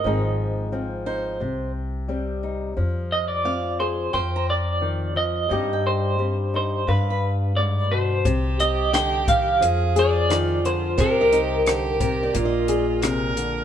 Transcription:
<<
  \new Staff \with { instrumentName = "Steel-string acoustic guitar" } { \time 4/4 \key c \minor \tempo 4 = 88 <bes' ees''>8 r4 c''4 r4. | r4 f''4 g''16 bes''4~ bes''16 r8 | ees''16 g''4~ g''16 r8 f''16 b''4~ b''16 r8 | r4 ees''4~ ees''16 r4. r16 |
c''16 ees''4~ ees''16 bes'16 d''16 ees''4 r4 | }
  \new Staff \with { instrumentName = "Clean electric guitar" } { \time 4/4 \key c \minor ees''8 r2. r8 | r8 ees''16 d''8. c''8 c''8 d''4 ees''8~ | ees''8 c''4 c''8 b'4 d''8 c''8~ | c''8 ees''8 g''8 f''4 d''4 c''8 |
bes'2. r4 | }
  \new Staff \with { instrumentName = "Viola" } { \time 4/4 \key c \minor r1 | r1 | r1 | g'2 aes'4 f'4 |
g'4 g'4 f'4 bes'4 | }
  \new Staff \with { instrumentName = "Nylon-string guitar" } { \clef bass \time 4/4 \key c \minor << { <f c' ees' aes'>4 c'8 ees'8 r4 c'8 ees'8 | r4 f'8 aes'8 r2 | <g c' ees' g'>4 c'8 ees'8 r2 | r8 g'4. r8 aes'4. |
r8 ees'4. r8 aes'4. | } \\ { aes,4 f4 c4 g4 | f4 c'4 f4 ees8 f8 | g,4 g4 g,4 aes,8 b,8 | c4 d8 ees8 f4 ees8 d8 |
c4 d8 c8 bes,4 c8 d8 | } >> }
  \new Staff \with { instrumentName = "Upright bass" } { \clef bass \time 4/4 \key c \minor aes,,2 c,2 | f,2 f,2 | g,2 g,2 | c,2 f,2 |
c,2 bes,,2 | }
  \new DrumStaff \with { instrumentName = "Drums" } \drummode { \time 4/4 r4 r4 r4 r4 | r4 r4 r4 r4 | r4 r4 r4 r4 | <hh bd>8 hh8 <hh ss>8 <hh bd>8 hh8 hh8 <hh ss>8 hh8 |
<hh bd>8 hh8 <hh ss>8 <hh bd>8 hh8 hh8 <hh ss>8 hh8 | }
>>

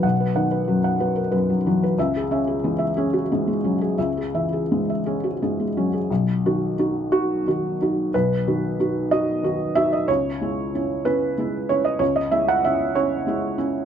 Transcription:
\new Staff \with { instrumentName = "Felt piano" } { \time 6/8 \key b \major \tempo 4. = 62 << { <b' fis''>16 b'16 fis''16 b'16 fis16 fis''16 b'16 ais'16 b'16 fis16 e16 b'16 | e''16 gis'16 e''16 gis'16 gis16 e''16 gis'16 fis'16 gis'16 gis16 fis16 gis'16 | e''16 gis'16 e''16 gis'16 gis16 e''16 gis'16 fis'16 gis'16 gis16 fis16 gis'16 | r4. fis'4. |
b'4. dis''4 e''16 dis''16 | cis''4. b'4 cis''16 dis''16 | cis''16 dis''16 e''16 fis''16 e''8 cis''4. | } \\ { <b,, fis>8 dis8 fis,8 fis8 fis,8 fis8 | cis,8 cis'8 e8 cis'8 gis,8 cis'8 | cis,8 e8 gis,8 cis'8 gis,8 cis'8 | b,,8 <dis fis'>8 <dis' fis'>8 dis'8 <dis fis'>8 <dis' fis'>8 |
b,,8 <dis fis'>8 <dis' fis'>8 <dis' fis'>8 <dis fis'>8 <dis' fis'>8 | cis,8 <gis e'>8 <cis' e'>8 <cis' e'>8 <gis e'>8 <cis' e'>8 | cis,8 <gis e'>8 <cis' e'>8 <cis' e'>8 <gis e'>8 <cis' e'>8 | } >> }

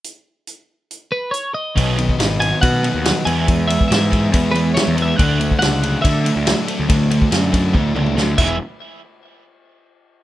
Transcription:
<<
  \new Staff \with { instrumentName = "Clean electric guitar" } { \time 4/4 \key e \mixolydian \tempo 4 = 141 r2 r8 b'8 cis''8 dis''8~ | dis''4. gis''8 fis''4. gis''8~ | gis''8 e''8 e''4 r8 b'8 \tuplet 3/2 { cis''8. r16 e''8 } | fis''4 fis''4 e''2~ |
e''2. r8 e''8 | r1 | }
  \new Staff \with { instrumentName = "Transistor combo organ" } { \time 4/4 \key e \mixolydian << { r1 | <dis' dis''>2.~ <dis' dis''>8 <e' e''>8~ | <e' e''>1~ | <e' e''>1~ |
<e' e''>2.~ <e' e''>8 <gis b e' b' e''>8 | r1 | } \\ { r1 | b'1~ | b'1 | a'1~ |
a'2.~ a'8 r8 | r1 | } >> }
  \new Staff \with { instrumentName = "Transistor combo organ" } { \time 4/4 \key e \mixolydian r1 | <fis b>2.~ <fis b>8 <gis b>8~ | <gis b>1 | <fis d'>1~ |
<fis d'>2.~ <fis d'>8 r8 | r1 | }
  \new Staff \with { instrumentName = "Distorted electric guitar" } { \time 4/4 \key e \mixolydian r1 | b,8 b8 dis'8 fis'8 b8 dis'8 fis8 e,8 | e,8 b8 e'8 gis'8 b8 e'8 e8 b8 | d8 a8 d'8 e'8 a8 d'8 fis8 a8 |
d8 a8 d'8 e'8 a8 d'8 fis8 <e, b, e gis b gis'>8 | r1 | }
  \new Staff \with { instrumentName = "Overdriven electric guitar" } { \clef bass \time 4/4 \key e \mixolydian r1 | <b, dis fis>8 <b, dis>8 <b, dis>8 <b, dis>8 <b, dis>8 <b, dis>8 <b, dis>8 <e gis b>8 | <e gis>8 <e gis>8 <e gis>8 <e gis>8 <e gis>8 <e gis>8 <e gis>8 <e gis>8 | <d a d'>8 <d a>8 <d a>8 <d a>8 <d a>8 <d a>8 <d a>8 <d a>8 |
<d a>8 <d a>8 <d a>8 <d a>8 <d a>8 <d a>8 <d a>8 <e gis b e' gis'>8 | r1 | }
  \new Staff \with { instrumentName = "Picked electric bass" } { \clef bass \time 4/4 \key e \mixolydian r1 | b,,4 gis,,4 b,8. dis,8 r16 e,8~ | e,4 gis,4 e,4~ e,16 e,8. | d,4 cis,4 d8. d,8 r8 d,16 |
d,4 fis,4 d,8 cis,8 d,8 e,,8 | r1 | }
  \new DrumStaff \with { instrumentName = "Drums" } \drummode { \time 4/4 hh4 hh4 hh4 hh4 | <bd cymr>8 cymr16 bd16 <cymr sn>8 cymr8 <bd cymr>8 cymr8 <cymr sn>8 cymr8 | <bd cymr>8 cymr16 bd16 <cymr sn>8 <bd cymr>8 <bd cymr>8 cymr8 <cymr sn>8 cymr8 | <bd cymr>8 cymr16 bd16 <cymr sn>8 cymr8 <bd cymr>8 cymr8 <cymr sn>8 cymr8 |
<bd cymr>8 cymr16 bd16 <cymr sn>8 <bd cymr>8 <bd tommh>8 toml16 toml16 sn8 <cymc bd>8 | r4 r4 r4 r4 | }
>>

